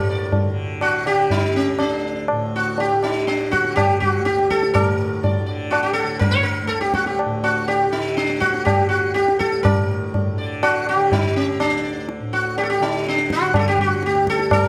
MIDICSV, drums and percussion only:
0, 0, Header, 1, 2, 480
1, 0, Start_track
1, 0, Tempo, 489396
1, 2244, Time_signature, 5, 2, 24, 8
1, 14399, End_track
2, 0, Start_track
2, 0, Title_t, "Tabla"
2, 318, Note_on_c, 9, 63, 72
2, 318, Note_on_c, 9, 64, 64
2, 416, Note_off_c, 9, 63, 0
2, 416, Note_off_c, 9, 64, 0
2, 797, Note_on_c, 9, 60, 63
2, 895, Note_off_c, 9, 60, 0
2, 1040, Note_on_c, 9, 60, 51
2, 1139, Note_off_c, 9, 60, 0
2, 1278, Note_on_c, 9, 63, 71
2, 1278, Note_on_c, 9, 64, 57
2, 1376, Note_off_c, 9, 63, 0
2, 1376, Note_off_c, 9, 64, 0
2, 1752, Note_on_c, 9, 60, 69
2, 1850, Note_off_c, 9, 60, 0
2, 2238, Note_on_c, 9, 60, 67
2, 2336, Note_off_c, 9, 60, 0
2, 2725, Note_on_c, 9, 63, 70
2, 2823, Note_off_c, 9, 63, 0
2, 2969, Note_on_c, 9, 60, 50
2, 3067, Note_off_c, 9, 60, 0
2, 3220, Note_on_c, 9, 62, 67
2, 3318, Note_off_c, 9, 62, 0
2, 3342, Note_on_c, 9, 62, 52
2, 3440, Note_off_c, 9, 62, 0
2, 3462, Note_on_c, 9, 37, 50
2, 3560, Note_off_c, 9, 37, 0
2, 3577, Note_on_c, 9, 62, 48
2, 3675, Note_off_c, 9, 62, 0
2, 3700, Note_on_c, 9, 60, 66
2, 3700, Note_on_c, 9, 64, 59
2, 3798, Note_off_c, 9, 60, 0
2, 3798, Note_off_c, 9, 64, 0
2, 3944, Note_on_c, 9, 64, 47
2, 4042, Note_off_c, 9, 64, 0
2, 4179, Note_on_c, 9, 62, 70
2, 4277, Note_off_c, 9, 62, 0
2, 4302, Note_on_c, 9, 62, 53
2, 4400, Note_off_c, 9, 62, 0
2, 4421, Note_on_c, 9, 37, 56
2, 4520, Note_off_c, 9, 37, 0
2, 4541, Note_on_c, 9, 62, 51
2, 4639, Note_off_c, 9, 62, 0
2, 4658, Note_on_c, 9, 60, 89
2, 4658, Note_on_c, 9, 64, 80
2, 4756, Note_off_c, 9, 60, 0
2, 4756, Note_off_c, 9, 64, 0
2, 5139, Note_on_c, 9, 63, 75
2, 5139, Note_on_c, 9, 64, 62
2, 5237, Note_off_c, 9, 63, 0
2, 5237, Note_off_c, 9, 64, 0
2, 5615, Note_on_c, 9, 60, 66
2, 5713, Note_off_c, 9, 60, 0
2, 6089, Note_on_c, 9, 63, 71
2, 6089, Note_on_c, 9, 64, 65
2, 6187, Note_off_c, 9, 63, 0
2, 6187, Note_off_c, 9, 64, 0
2, 6564, Note_on_c, 9, 62, 65
2, 6662, Note_off_c, 9, 62, 0
2, 6688, Note_on_c, 9, 62, 51
2, 6786, Note_off_c, 9, 62, 0
2, 6804, Note_on_c, 9, 37, 56
2, 6902, Note_off_c, 9, 37, 0
2, 6927, Note_on_c, 9, 62, 51
2, 7025, Note_off_c, 9, 62, 0
2, 7053, Note_on_c, 9, 60, 66
2, 7151, Note_off_c, 9, 60, 0
2, 7295, Note_on_c, 9, 60, 56
2, 7393, Note_off_c, 9, 60, 0
2, 7536, Note_on_c, 9, 63, 74
2, 7634, Note_off_c, 9, 63, 0
2, 8021, Note_on_c, 9, 62, 70
2, 8119, Note_off_c, 9, 62, 0
2, 8138, Note_on_c, 9, 62, 55
2, 8236, Note_off_c, 9, 62, 0
2, 8255, Note_on_c, 9, 37, 49
2, 8353, Note_off_c, 9, 37, 0
2, 8379, Note_on_c, 9, 62, 51
2, 8477, Note_off_c, 9, 62, 0
2, 8499, Note_on_c, 9, 60, 63
2, 8499, Note_on_c, 9, 64, 59
2, 8597, Note_off_c, 9, 60, 0
2, 8597, Note_off_c, 9, 64, 0
2, 8743, Note_on_c, 9, 62, 54
2, 8841, Note_off_c, 9, 62, 0
2, 8983, Note_on_c, 9, 62, 72
2, 9082, Note_off_c, 9, 62, 0
2, 9105, Note_on_c, 9, 62, 53
2, 9203, Note_off_c, 9, 62, 0
2, 9225, Note_on_c, 9, 37, 55
2, 9323, Note_off_c, 9, 37, 0
2, 9342, Note_on_c, 9, 62, 49
2, 9441, Note_off_c, 9, 62, 0
2, 9463, Note_on_c, 9, 60, 92
2, 9463, Note_on_c, 9, 64, 80
2, 9561, Note_off_c, 9, 60, 0
2, 9561, Note_off_c, 9, 64, 0
2, 9947, Note_on_c, 9, 63, 74
2, 9947, Note_on_c, 9, 64, 65
2, 10046, Note_off_c, 9, 63, 0
2, 10046, Note_off_c, 9, 64, 0
2, 10425, Note_on_c, 9, 60, 70
2, 10523, Note_off_c, 9, 60, 0
2, 10659, Note_on_c, 9, 60, 51
2, 10757, Note_off_c, 9, 60, 0
2, 10903, Note_on_c, 9, 63, 68
2, 10903, Note_on_c, 9, 64, 59
2, 11001, Note_off_c, 9, 63, 0
2, 11001, Note_off_c, 9, 64, 0
2, 11377, Note_on_c, 9, 60, 73
2, 11476, Note_off_c, 9, 60, 0
2, 11855, Note_on_c, 9, 62, 65
2, 11953, Note_off_c, 9, 62, 0
2, 12101, Note_on_c, 9, 62, 54
2, 12199, Note_off_c, 9, 62, 0
2, 12336, Note_on_c, 9, 63, 76
2, 12434, Note_off_c, 9, 63, 0
2, 12576, Note_on_c, 9, 60, 56
2, 12674, Note_off_c, 9, 60, 0
2, 12817, Note_on_c, 9, 62, 69
2, 12915, Note_off_c, 9, 62, 0
2, 12931, Note_on_c, 9, 62, 53
2, 13029, Note_off_c, 9, 62, 0
2, 13046, Note_on_c, 9, 37, 51
2, 13144, Note_off_c, 9, 37, 0
2, 13168, Note_on_c, 9, 62, 53
2, 13266, Note_off_c, 9, 62, 0
2, 13280, Note_on_c, 9, 60, 70
2, 13280, Note_on_c, 9, 64, 63
2, 13379, Note_off_c, 9, 60, 0
2, 13379, Note_off_c, 9, 64, 0
2, 13516, Note_on_c, 9, 64, 50
2, 13614, Note_off_c, 9, 64, 0
2, 13757, Note_on_c, 9, 62, 74
2, 13855, Note_off_c, 9, 62, 0
2, 13879, Note_on_c, 9, 62, 54
2, 13977, Note_off_c, 9, 62, 0
2, 13997, Note_on_c, 9, 37, 56
2, 14095, Note_off_c, 9, 37, 0
2, 14115, Note_on_c, 9, 62, 54
2, 14213, Note_off_c, 9, 62, 0
2, 14234, Note_on_c, 9, 60, 86
2, 14234, Note_on_c, 9, 64, 84
2, 14332, Note_off_c, 9, 60, 0
2, 14332, Note_off_c, 9, 64, 0
2, 14399, End_track
0, 0, End_of_file